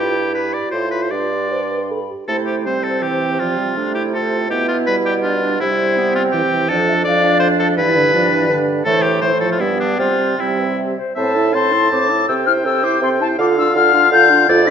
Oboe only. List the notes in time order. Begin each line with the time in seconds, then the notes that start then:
0.00 G4
0.34 B4
0.53 D5
0.72 C5
0.91 B4
1.02 C5
1.11 D5
2.28 A4
2.47 G4
2.66 C5
2.84 A4
3.03 G4
3.39 F4
3.95 G4
4.14 A4
4.51 G4
4.68 F4
4.87 B4
5.06 G4
5.23 F4
5.60 E4
6.15 F4
6.32 G4
6.69 A4
7.04 D5
7.40 C5
7.60 A4
7.78 B4
8.85 A4
9.03 G4
9.21 C5
9.40 A4
9.51 F4
9.60 E4
9.80 D4
9.99 F4
10.40 E4
11.16 E5
11.54 A5
12.29 G5
13.39 F5
14.49 D5